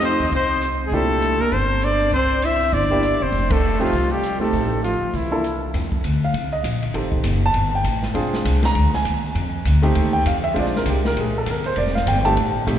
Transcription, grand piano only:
0.00 0.15 A3 medium
0.00 0.16 C4 medium
0.00 0.16 D#4 medium
0.00 0.16 G4 medium
0.93 1.37 A#2 medium
0.93 1.37 D4 medium
0.93 1.37 E4 medium
0.93 1.37 G4 medium
2.90 3.01 A#3 medium
2.90 3.01 D4 medium
2.90 3.01 E4 medium
2.90 3.02 G4 medium
3.80 3.91 A3 medium
3.80 3.91 C4 medium
3.80 3.92 D#4 medium
3.80 3.92 G4 medium
4.40 4.80 A3 medium
4.40 4.80 C4 medium
4.40 4.81 D#4 medium
4.40 4.81 G4 medium
5.31 5.42 A#3 medium
5.31 5.42 D4 medium
5.31 5.43 E4 medium
5.31 5.43 A4 medium
6.24 6.51 F5 medium
6.53 6.80 D#5 medium
6.94 7.39 C4 medium
6.94 7.39 D#4 soft
6.94 7.39 G4 soft
6.94 7.39 A4 medium
7.46 7.72 A5 loud
7.75 8.02 G5 medium
8.14 8.59 C4 medium
8.14 8.59 D4 medium
8.14 8.59 F4 medium
8.14 8.59 G#4 medium
8.65 8.92 A#5 loud
8.95 9.22 G#5 medium
9.82 10.23 A3 medium
9.82 10.23 C4 medium
9.82 10.23 D#4 medium
9.82 10.23 G4 medium
10.13 10.25 G5 medium
10.27 10.44 F5 medium
10.44 10.55 E5 medium
10.54 10.99 G#3 medium
10.54 10.99 C4 medium
10.54 11.00 D4 medium
10.54 11.00 F4 medium
10.59 10.75 D5 medium
10.77 10.87 A#4 medium
10.90 11.05 G4 medium
11.07 11.17 A#4 loud
11.20 11.36 G#4 medium
11.38 11.48 A4 medium
11.51 11.66 A#4 medium
11.66 11.77 C5 medium
11.78 11.94 D5 medium
11.95 12.06 F5 medium
12.08 12.24 G5 medium
12.25 12.35 A3 medium
12.25 12.35 C4 medium
12.25 12.36 D#4 medium
12.25 12.36 G4 medium
12.25 12.79 A5 loud
12.67 12.79 A3 medium
12.67 12.79 C4 medium
12.67 12.79 D#4 medium
12.67 12.79 G4 medium

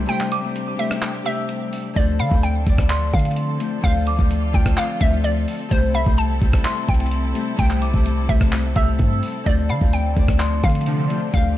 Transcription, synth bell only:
0.32 0.54 D6 loud
1.26 1.92 E6 medium
2.20 2.42 B5 medium
2.90 3.80 C6 medium
4.07 4.30 D6 medium
5.95 6.17 B5 medium
6.65 7.55 C6 medium
7.82 8.04 D6 medium
8.76 9.42 E6 medium
9.70 9.92 B5 medium
10.40 11.30 C6 medium

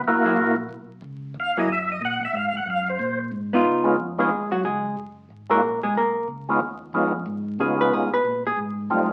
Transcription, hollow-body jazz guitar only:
0.25 0.36 F#3 medium
0.25 0.36 A#3 medium
0.25 0.36 E4 medium
0.25 0.36 G#4 medium
1.57 1.68 F#3 medium
1.57 1.68 A#3 medium
1.57 1.68 E4 medium
1.57 1.68 G#4 medium
3.53 3.96 B3 medium
3.53 3.96 D#4 medium
3.53 3.97 F4 medium
4.20 4.50 G#3 medium
4.20 4.50 G#4 medium
4.52 4.64 F#3 medium
4.52 4.63 F#4 medium
4.65 4.95 G#3 medium
4.65 4.95 G#4 medium
5.51 5.81 A#3 medium
5.51 5.81 A#4 medium
5.83 5.95 G#3 medium
5.83 5.95 G#4 medium
5.97 6.27 A#3 medium
5.97 6.27 A#4 medium
7.61 7.80 G#4 medium
7.81 7.93 B4 medium
7.93 8.13 G#4 medium
8.14 8.44 B4 loud
8.47 8.58 G#4 medium

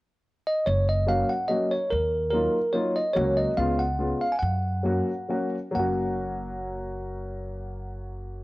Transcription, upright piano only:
1.07 1.30 F#3 medium
1.07 1.30 A#3 medium
1.07 1.30 C#4 medium
1.07 1.30 F#4 medium
1.49 1.72 F#3 medium
1.49 1.72 A#3 soft
1.49 1.72 C#4 soft
1.49 1.73 F#4 medium
2.32 2.55 F#3 soft
2.32 2.55 A#3 soft
2.32 2.55 D#4 soft
2.32 2.56 F4 medium
2.73 2.96 F#3 soft
2.73 2.96 A#3 soft
2.73 2.96 D#4 soft
2.73 2.97 F4 medium
3.15 3.49 F#3 medium
3.15 3.49 A#3 medium
3.15 3.50 C#4 medium
3.15 3.50 F#4 medium
3.57 3.79 G#3 medium
3.57 3.80 B3 medium
3.57 3.80 C#4 soft
3.57 3.80 F4 medium
3.99 4.21 G#3 medium
3.99 4.21 B3 soft
3.99 4.22 C#4 soft
3.99 4.22 F4 medium
4.83 5.08 F#3 medium
4.83 5.08 A#3 soft
4.83 5.09 C#4 soft
4.83 5.09 F#4 medium
5.28 5.53 F#3 soft
5.28 5.54 A#3 soft
5.28 5.54 C#4 medium
5.28 5.54 F#4 medium
5.71 8.44 F#3 medium
5.71 8.44 A#3 medium
5.76 8.44 C#4 medium
5.76 8.44 F#4 medium

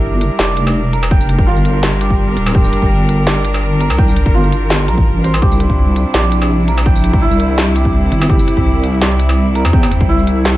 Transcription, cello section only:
0.00 5.38 G3 medium
0.00 5.38 D4 medium
0.00 5.38 A#4 medium
5.42 10.57 C3 medium
5.42 10.57 G3 medium
5.42 8.27 D4 medium
5.42 10.57 E4 medium
8.30 10.57 C4 medium

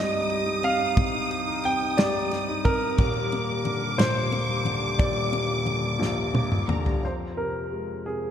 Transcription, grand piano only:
0.00 0.60 D#5 medium
0.64 1.61 F5 loud
1.65 1.99 G5 loud
1.97 2.67 D5 loud
2.65 4.03 A#4 loud
3.98 5.02 C5 loud
4.99 6.65 D5 medium
7.05 7.12 C5 medium
7.37 8.07 A#4 medium
8.06 8.31 G#4 medium

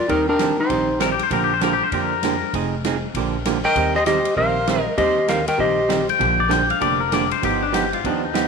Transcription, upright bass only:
0.09 0.58 D#2 medium
0.70 1.19 A#1 medium
1.31 1.80 A#1 medium
1.92 2.41 F2 medium
2.53 3.03 F1 medium
3.15 3.64 A#1 medium
3.76 4.25 D#2 medium
4.37 4.86 A#1 medium
4.98 5.47 D#2 medium
5.59 6.08 A#1 medium
6.20 6.69 A#1 medium
6.82 7.31 F1 medium
7.43 7.92 G1 medium
8.04 8.48 D#2 medium

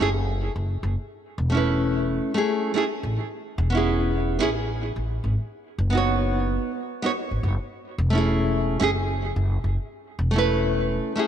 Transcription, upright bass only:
0.00 0.51 F#1 medium
0.56 0.77 F#1 medium
0.83 0.95 F#1 loud
1.38 2.16 E1 loud
3.03 3.15 A1 medium
3.58 4.36 E1 loud
4.41 4.91 A1 medium
4.96 5.17 A1 medium
5.24 5.35 G#1 medium
5.78 6.56 F#1 loud
7.31 7.40 G#1 medium
7.43 7.55 F#1 loud
7.98 8.76 E1 loud
8.81 9.31 F#1 medium
9.36 9.58 F#1 loud
9.64 9.75 F#1 medium
10.19 10.96 E1 loud

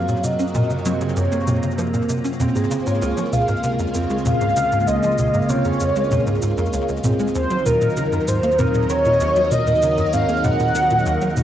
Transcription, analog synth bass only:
0.08 0.15 A#2 medium
0.24 0.35 C3 medium
0.39 0.46 C#4 medium
0.55 0.61 A#2 loud
0.70 0.81 C#3 medium
0.85 0.92 F#3 loud
1.01 1.16 C#3 medium
1.16 1.28 F#2 loud
1.32 1.39 A#3 medium
1.47 1.59 F#2 medium
1.63 1.70 C#3 medium
1.78 1.93 F3 medium
1.94 2.00 A#2 medium
2.09 2.20 C3 medium
2.24 2.31 C#4 medium
2.40 2.47 F2 loud
2.55 2.67 G#2 medium
2.71 2.78 C#3 loud
2.86 3.01 G#2 medium
3.02 3.13 C#2 loud
3.17 3.24 F3 medium
3.32 3.44 C#2 medium
3.48 3.55 G#2 medium
3.63 3.78 C3 medium
3.79 3.86 F2 medium
3.95 4.06 F2 medium
4.10 4.17 G#3 medium
4.25 4.32 F2 loud
4.41 4.52 G#2 medium
4.56 4.63 C#3 loud
4.72 4.87 G#2 medium
4.88 4.99 C#2 loud
5.03 5.10 F3 medium
5.18 5.30 C#2 medium
5.34 5.41 G#2 medium
5.49 5.64 C3 medium
5.65 5.72 F2 medium
5.80 5.92 F2 medium
5.96 6.03 G#3 medium
6.11 6.18 F2 loud
6.27 6.38 G#2 medium
6.42 6.54 G#2 medium
6.57 6.69 F2 loud
6.73 6.80 C#2 medium
6.88 7.00 C#2 medium
7.04 7.15 G#2 medium
7.19 7.26 G#3 medium
7.35 7.46 D#2 loud
7.50 7.57 F#3 medium
7.66 7.77 D#2 medium
7.81 7.88 A#2 medium
7.97 8.11 C#3 medium
8.12 8.19 F#2 medium
8.28 8.39 G#2 medium
8.43 8.50 A#3 medium
8.59 8.65 F#2 loud
8.74 8.85 A#2 medium
8.90 8.96 D#3 loud
9.05 9.20 A#2 medium
9.21 9.32 D#2 loud
9.36 9.43 F#3 medium
9.52 9.63 D#2 medium
9.67 9.74 A#2 medium
9.82 9.97 C#3 medium
9.98 10.05 F#2 medium
10.13 10.25 G#2 medium
10.29 10.36 A#3 medium
10.44 10.51 F#2 loud
10.59 10.71 A#2 medium
10.75 10.82 D#3 loud
10.90 11.05 A#2 medium
11.06 11.17 D#2 loud
11.22 11.28 F#3 medium
11.37 11.43 D#2 medium

